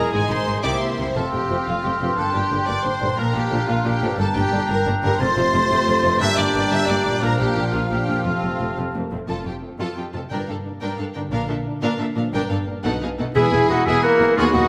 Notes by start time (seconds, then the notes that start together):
Already playing: E3 G#3 E4 G#4 A#4 A#5
0.11 G#1 G#2 D#3 G#3 D#4 G#4 G#5
0.29 G#1 G#2 G#3 C5 C6
0.46 G#1 G#2 G#3 D#4 G#4
0.63 C2 C3 A#3 C4 E4 G4 D5 E5 D6
0.81 A#3 C5 C6
0.98 C2 F2 C3 A#3 C4 G4
1.02 A3
1.07 C4
1.11 A3 C4 A4
1.15 F1 F2 C4 A4 F5 A5 C6
1.32 F1 F2 A3 C4 G4 G5
1.49 F1 F2 C3 F3 A3 C4 F4
1.67 F1 F2 A3 C4 F4 F5
1.84 F1 F2 A3 C4 G4 G5
1.99 F1 F2 G2 C3 F3 A3 C4 F4
2.04 D4
2.08 G4
2.13 A4 A#4
2.17 G1 G2 A#3 D4 G5 A5
2.34 G1 G2 A#3 D4 G4 G5
2.49 G1 G2 D3 G3 A#3 D4
2.67 G1 G2 A#3 D4 D5 D6
2.84 G1 G2 A#3 D4 C5 C6
3.00 G1 G2 A#2 D3 G3 A#3 D4
3.05 D4
3.09 F4
3.14 A#3 D4 A#4
3.18 A#1 A#2 A#4 F5 A#5
3.33 A#1 A#2 A#3 D4 G4 G5
3.50 A#1 A#2 D3 F3 A#3 D4
3.68 A#1 A#2 A#3 D4 F4 F5
3.85 A#1 A#2 A#3 D4 G4 G5
4.00 A#1 G2 A#2 D3 F3 A#3 D4
4.05 D4
4.09 G4
4.14 A#4
4.18 G1 G2 A#3 D4 A4 G5 A5 A#5
4.35 G1 G2 A#3 D4 G4 G5
4.52 G1 G2 D3 G3 A#3 D4
4.69 G1 G2 A#3 D4 A#4 A#5
4.86 G1 G2 A#3 D4
5.01 G1 F2 G2 D3 G3 A#3 D4 A#4 A#5
5.06 F4
5.11 A4
5.15 C5 C6
5.19 F1 F2 C3 A3 C4 F4 C5 A5 C6
5.37 F1 F2 A3 F4
5.53 F1 F2 A3 F4
5.70 F1 F2 A3 F4
5.87 F1 F2 A3 F4
6.03 F1 F2 G2 A3 F4
6.08 D4
6.12 G4
6.16 A#3 D4 A#4 G5
6.21 G1 G2 G3 A#3 D4 E5 A#5 E6
6.37 G1 G2 A#3 D4 D5 D6
6.54 G1 G2 A#3 D4
6.71 G1 G2 A#3 D4 E5 E6
6.87 G1 G2 A#3 D4 D5 D6
7.04 G1 G2 A#2 A#3 D4
7.08 D4
7.13 F4
7.17 A#4
7.22 A#1 A#2 F3 A#3 D4 A#4 F5 A#5
7.39 A#1 A#2 A#3 D4 G4 G5
7.56 A#1 A#2 A#3 D4
7.74 A#1 A#2 A#3 D4 F4 F5
7.91 A#1 A#2 A#3 D4 G4 G5
8.07 A#1 F2 A#2 A#3 D4
8.11 C4
8.16 F4
8.21 A3 C4 A4
8.25 F1 F2 C3 A3 C4 F4 F5 A5
8.42 F1 F2 A3 C4
8.60 F1 F2 A3 C4
8.77 F1 F2 A3 C4
8.95 F1 F2 A3 A#3 C4
9.12 F1 F2 A3 C4
9.28 F1 F2 F4 A4 A5
9.45 F2 C4 F4 G4 G5
9.63 A3 C4 F4
9.79 F2 F4 A4 A5
9.96 F2 F4 G4 G5
10.13 F2 C3 A3 C4 F4 A4 A5
10.30 G1 G2 D4 A#4 G5
10.47 G2 A#3 D4 A4 F5
10.64 A#3 D4
10.81 G2 D4 A#4 G5
10.98 G2 D4 A4 F5
11.14 G2 D3 A#3 D4 A#4 G5
11.31 A#1 A#2 D4 A#4 F5
11.48 A#2 A#3 D4 A4 E5
11.65 A#3 D4
11.82 A#2 D4 A#4 F5
11.98 A#2 D4 A4 E5
12.15 A#2 F3 A#3 D4 A#4 F5
12.32 G1 G2 D4 A#4 G5
12.50 G2 A#3 D4 A4 F5
12.66 A#3 D4 A#4
12.84 B1 B2 D#4 A4 F#5
13.01 B2 B3 D#4 G#4 F5
13.18 B2 A3 D#4 A4 F#5
13.34 E1 E2 E3 B3 E4 G#4 E5 B5
13.45 B3
13.52 E1 E2 B3 E4 G#4 E5
13.69 E1 E2 B3 D#4 F#4 G#4 E5
13.78 E5
13.86 E1 E2 E3 B3 E4 G#4 E5 G#5 B5
14.03 A#3 F#4 A#4 E5
14.12 G#4
14.20 E1 E2 B3 G#4 E5
14.29 E4
14.36 D#2 D#3 F#3 B3 D#4 F4 F#4 G#4 F#5 B5
14.46 D#4
14.53 D#2 B3 D#4 F#4 F#5